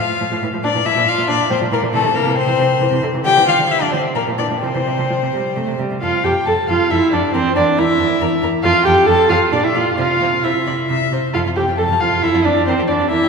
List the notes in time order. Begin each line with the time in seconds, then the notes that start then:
Already playing: F4 F5
0.21 A2 F3
0.32 A2 F3
0.43 A2 E3
0.53 A2 F3
0.64 A#2 F3 D4 D5
0.75 A#2 E3
0.85 A#2 F3 E4 E5
0.96 A#2 F3
1.07 F4 F5
1.18 A#2 F3
1.28 A#2 F3 D4 D5
1.50 A#2 F3 C4 C5
1.61 A#2 F3
1.71 A#2 E3 A#3 A#4
1.82 A#2 F3
1.92 C3 E3 A3 A4
2.04 C3 D3
2.14 C3 E3 A#3 A#4
2.25 C3 E3
2.35 C4 C5
2.47 C3 E3
2.58 C3 E3
2.80 C3 E3
2.91 C3 E3
3.02 C3 D3
3.13 C3 E3
3.24 D3 F3 G4 G5
3.36 D3 E3
3.47 D3 F3 F4 F5
3.58 D3 F3
3.69 E4 E5
3.81 D3 F3 D4 D5
3.92 D3 F3 C4 C5
4.15 A#2 F3 A#3 A#4
4.27 A#2 F3
4.38 A#2 E3 D4 D5
4.51 A#2 F3
4.61 C3 F3 C4 C5
4.74 C3 E3
4.86 C3 F3
4.98 C3 F3
5.10 F3
5.23 C3
5.33 C3 G3
5.56 C3 A3
5.67 C3
5.79 C3 G3
5.91 C3
6.02 F2 F4 A4 F5
6.24 F2 G4 A4 G5
6.46 F2 A4 A5
6.68 F2 F4 A4 F5
6.90 F2 E4 A4 E5
7.13 F2 D4 A4 D5
7.34 E2 C4 A#4 C5
7.56 E2 D4 A#4 D5
7.78 E2 E4 A#4 E5
7.99 E2 A#4
8.21 E2 A#4
8.43 E2 A#4
8.63 F2 F4 A4 F5
8.85 F2 G4 A4 G5
9.06 F2 A4 A5
9.29 F2 F4 A4 F5
9.52 A#2 D4 D5
9.64 E4 E5
9.74 A#2 F4 D5 F5
9.98 C3 F4 C5 F5
10.21 C3 C5
10.43 C3 E4 C5 E5
10.67 C3 D5
10.89 C3 E5
11.11 C3 C5
11.33 F2 F4 A4 F5
11.46 F2 F4
11.56 F2 C4 G4 G5
11.67 F2 F4
11.78 F2 A4 A5
11.89 F2 F4
12.00 F2 C4 F4 F5
12.12 F2 F4
12.22 F2 E4 A4 E5
12.34 F2 F4
12.45 F2 C4 D4 D5
12.56 F2 F4
12.66 E2 C4 A#4 C5
12.78 E2 G4
12.88 E2 D4 E4 D5
12.99 E2 G4
13.10 E2 E4 A#4 E5
13.21 E2 G4